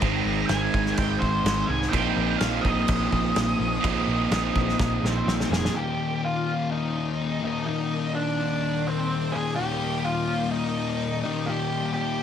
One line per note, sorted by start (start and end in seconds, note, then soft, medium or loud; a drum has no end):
0.00 0.20 G#1 medium
0.00 1.66 G#2 medium
0.00 1.67 D#3 medium
0.00 1.88 G#3 medium
0.00 1.68 G#3 loud
0.00 1.94 C4 loud
0.00 1.88 D#4 medium
0.00 1.89 A#4 medium
0.00 1.88 C5 medium
0.00 1.88 D#5 medium
0.00 0.44 A#5 medium
0.00 kick loud
0.00 crash medium
0.04 1.95 D#4 medium
0.25 0.43 G#1 loud
0.46 0.67 G#1 medium
0.46 0.94 G#5 loud
0.46 snare loud
0.46 crash medium
0.74 0.92 G#1 loud
0.74 kick loud
0.86 snare soft
0.95 1.15 G#1 loud
0.95 1.20 G5 loud
0.95 kick loud
0.95 crash medium
1.19 1.39 G#1 medium
1.19 1.69 C5 loud
1.19 kick medium
1.44 1.62 G#1 loud
1.44 snare loud
1.44 crash medium
1.66 1.87 C2 medium
1.66 1.94 G#3 medium
1.66 1.89 G#5 loud
1.71 1.91 G#2 medium
1.71 1.92 D#3 medium
1.82 snare soft
1.89 2.11 A#1 loud
1.89 3.58 A#2 medium
1.89 3.58 F3 medium
1.89 5.71 A#3 medium
1.89 5.71 F4 medium
1.89 5.71 G#4 medium
1.89 5.71 C5 medium
1.89 5.70 D#5 medium
1.89 2.38 G5 medium
1.93 3.58 A#3 loud
1.93 3.82 C4 loud
1.93 3.84 D#4 loud
1.93 kick loud
1.93 crash medium
2.17 2.34 A#1 medium
2.39 2.59 A#1 medium
2.39 2.64 F5 loud
2.39 snare loud
2.39 crash medium
2.61 2.83 A#1 loud
2.61 5.22 D#5 loud
2.61 kick medium
2.88 3.06 A#1 medium
2.88 kick loud
2.88 crash medium
3.12 3.30 A#1 medium
3.12 kick medium
3.36 3.54 A#1 loud
3.36 snare loud
3.36 crash medium
3.58 3.77 A#1 medium
3.58 3.81 A#2 medium
3.58 3.82 F3 medium
3.58 3.85 A#3 medium
3.82 4.02 A#1 loud
3.82 5.49 A#2 medium
3.82 5.50 F3 loud
3.82 5.48 A#3 medium
3.82 5.73 C4 loud
3.82 5.74 D#4 loud
3.82 kick loud
3.82 crash medium
4.07 4.25 A#1 medium
4.31 4.49 A#1 medium
4.31 snare loud
4.31 crash medium
4.56 4.74 A#1 loud
4.56 kick loud
4.69 snare soft
4.79 4.97 A#1 loud
4.79 kick loud
4.79 snare medium
5.03 5.21 A#1 medium
5.03 5.54 C4 loud
5.03 snare medium
5.26 5.44 A#1 medium
5.26 snare medium
5.40 snare medium
5.49 5.68 F1 medium
5.49 5.74 A#2 medium
5.49 5.73 F3 medium
5.49 5.73 A#3 medium
5.49 5.76 G#4 loud
5.49 snare loud
5.65 snare loud
5.72 7.44 D#2 medium
5.72 7.41 A#2 loud
5.72 12.23 D#3 medium
5.72 6.25 G4 loud
5.72 12.23 A#4 medium
5.72 12.23 D5 medium
5.72 12.23 G5 medium
5.77 7.41 D#3 loud
6.25 6.71 F4 loud
6.71 7.44 D#4 loud
7.41 7.65 D#2 medium
7.41 7.65 A#2 medium
7.41 7.68 D#3 medium
7.41 7.66 D#4 loud
7.65 9.36 D#2 medium
7.65 9.32 A#2 medium
7.65 9.32 D#3 loud
7.65 8.14 D#4 medium
8.15 8.88 D4 loud
8.87 9.35 C4 loud
9.32 9.56 A#2 medium
9.32 9.58 D#3 medium
9.32 9.55 G#4 loud
9.36 9.55 D#2 medium
9.55 11.21 D#2 medium
9.55 11.22 A#2 loud
9.55 11.22 D#3 medium
9.55 10.05 G4 medium
10.05 10.51 F4 loud
10.51 11.19 D#4 loud
11.23 11.45 D#2 medium
11.23 11.47 A#2 medium
11.23 11.46 D#3 medium
11.23 11.48 D#4 loud
11.46 12.23 D#2 medium
11.46 12.23 A#2 medium
11.46 12.23 D#3 loud
11.46 11.93 G4 loud
11.94 12.23 G4 loud